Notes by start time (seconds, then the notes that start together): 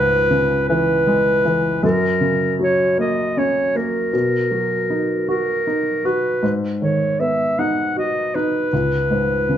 Already playing: C#2 G#2 B4
0.31 C#3
0.69 E3 B4
1.07 G#3
1.45 E3
1.83 F#2 A#4
2.21 C#3
2.59 F#3 C#5
2.98 A#3 D#5
3.37 C#4 C#5
3.75 A#3 A#4
4.13 B2
4.51 F#3
4.90 D#4
5.28 F#4 A#4
5.67 D#4
6.05 F#4 B4
6.43 G#2
6.81 D#3 C#5
7.20 B3 E5
7.59 D#4 F#5
7.96 F#4 D#5
8.35 D#4 B4
8.73 C#2
9.10 G#2
9.49 C#3